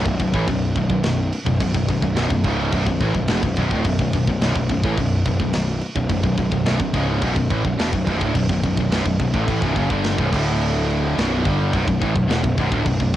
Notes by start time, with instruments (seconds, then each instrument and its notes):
0.06 picked electric bass B0, distorted electric guitar B1 F#2, kick
0.20 picked electric bass B0, distorted electric guitar B1 F#2, kick, crash
0.34 picked electric bass A1, distorted electric guitar A2 E3, kick
0.48 picked electric bass B0, distorted electric guitar B1 F#2, kick, crash
0.76 picked electric bass B0, distorted electric guitar B1 F#2, kick, crash
0.90 picked electric bass B0, distorted electric guitar B1 F#2, kick
1.03 picked electric bass B0, distorted electric guitar B1 F#2, snare, crash
1.32 crash
1.46 picked electric bass B0, distorted electric guitar B1 F#2, kick
1.60 picked electric bass B0, distorted electric guitar B1 F#2, kick, crash
1.74 picked electric bass B0, distorted electric guitar B1 F#2, kick
1.88 picked electric bass B0, distorted electric guitar B1 F#2, kick, crash
2.02 picked electric bass B0, distorted electric guitar B1 F#2, kick
2.16 picked electric bass B0, distorted electric guitar B1 F#2, snare, crash
2.30 picked electric bass B0, distorted electric guitar B1 F#2, kick
2.43 picked electric bass C#1, distorted electric guitar C#2 G#2 C#3, kick, crash
2.72 picked electric bass B0, distorted electric guitar B1 F#2, kick, crash
2.85 picked electric bass B0, distorted electric guitar B1, kick
2.89 distorted electric guitar B1 F#2
3.00 picked electric bass A1, distorted electric guitar A2 E3, kick, crash
3.14 picked electric bass B0, distorted electric guitar B1 F#2, kick
3.27 picked electric bass E1, distorted electric guitar E2 B2, snare, crash
3.43 picked electric bass B0, distorted electric guitar B1 F#2, kick
3.56 picked electric bass B0, distorted electric guitar B1 F#2, kick, crash
3.71 picked electric bass D1, distorted electric guitar D2 A2, kick
3.84 picked electric bass B0, distorted electric guitar B1 F#2, kick, crash
3.99 picked electric bass B0, distorted electric guitar B1 F#2, kick
4.13 picked electric bass B0, distorted electric guitar B1 F#2, kick, crash
4.27 picked electric bass B0, distorted electric guitar B1 F#2, kick
4.41 picked electric bass B0, distorted electric guitar B1 F#2, snare, crash
4.55 picked electric bass B0, distorted electric guitar B1 F#2, kick
4.69 picked electric bass B0, distorted electric guitar B1 F#2, kick, crash
4.84 picked electric bass A1, distorted electric guitar A2 E3, kick
4.97 picked electric bass B0, distorted electric guitar B1 F#2, kick, crash
5.25 picked electric bass B0, distorted electric guitar B1 F#2, kick, crash
5.40 picked electric bass B0, distorted electric guitar B1 F#2, kick
5.53 picked electric bass B0, distorted electric guitar B1 F#2, snare, crash
5.81 crash
5.96 picked electric bass B0, distorted electric guitar B1 F#2, kick
6.09 picked electric bass B0, distorted electric guitar B1 F#2, kick, crash
6.23 picked electric bass B0, distorted electric guitar B1 F#2, kick
6.38 picked electric bass B0, distorted electric guitar B1 F#2, kick, crash
6.52 picked electric bass B0, distorted electric guitar B1 F#2, kick
6.66 picked electric bass B0, distorted electric guitar B1 F#2, snare, crash
6.79 picked electric bass B0, distorted electric guitar B1 F#2, kick
6.94 picked electric bass C#1, distorted electric guitar C#2 G#2 C#3, kick, crash
7.21 picked electric bass B0, distorted electric guitar B1 F#2, kick, crash
7.36 picked electric bass B0, distorted electric guitar B1 F#2, kick
7.50 picked electric bass A1, distorted electric guitar A2 E3, kick, crash
7.65 picked electric bass B0, distorted electric guitar B1 F#2, kick
7.79 picked electric bass E1, distorted electric guitar E2 B2, snare, crash
7.93 picked electric bass B0, distorted electric guitar B1 F#2, kick
8.05 picked electric bass B0, distorted electric guitar B1 F#2, kick, crash
8.09 distorted electric guitar B1 F#2
8.19 picked electric bass D1, distorted electric guitar D2 A2, kick
8.24 distorted electric guitar D2 A2
8.34 picked electric bass B0, distorted electric guitar B1 F#2, kick, crash
8.39 distorted electric guitar B1 F#2
8.49 picked electric bass B0, distorted electric guitar B1 F#2, kick
8.63 picked electric bass B0, distorted electric guitar B1 F#2, kick, crash
8.77 picked electric bass B0, distorted electric guitar B1 F#2, kick
8.92 picked electric bass B0, distorted electric guitar B1 F#2, snare, crash
9.05 picked electric bass B0, distorted electric guitar B1 F#2, kick
9.20 picked electric bass B0, distorted electric guitar B1 F#2, kick, crash
9.34 picked electric bass A1, distorted electric guitar A2 E3, kick
9.47 picked electric bass A1, distorted electric guitar A2 E3, kick, crash
9.62 picked electric bass B0, distorted electric guitar B1 F#2, kick
9.76 picked electric bass F#1, distorted electric guitar F#2 C#3, kick, crash
9.90 picked electric bass G1, distorted electric guitar G2 D3 G3, kick
10.04 snare, crash
10.18 picked electric bass B0, distorted electric guitar B1 F#2, kick
10.32 picked electric bass D1, distorted electric guitar D2 A2 D3, kick, crash
10.61 crash
10.90 crash
11.16 picked electric bass B0, distorted electric guitar B1 F#2 B2, snare, crash
11.45 picked electric bass G1, distorted electric guitar G2 D3 G3, kick, crash
11.72 picked electric bass B0, distorted electric guitar B1 F#2, kick, crash
11.87 picked electric bass B0, distorted electric guitar B1 F#2, kick
12.00 picked electric bass A1, distorted electric guitar A2 E3, kick, crash
12.15 picked electric bass B0, distorted electric guitar B1 F#2, kick
12.28 picked electric bass E1, distorted electric guitar E2 B2, snare, crash
12.42 picked electric bass B0, distorted electric guitar B1 F#2, kick
12.58 picked electric bass B0, distorted electric guitar B1 F#2, kick, crash
12.71 picked electric bass D1, distorted electric guitar D2 A2, kick
12.86 picked electric bass B0, distorted electric guitar B1 F#2, kick, crash
13.00 picked electric bass B0, distorted electric guitar B1 F#2, kick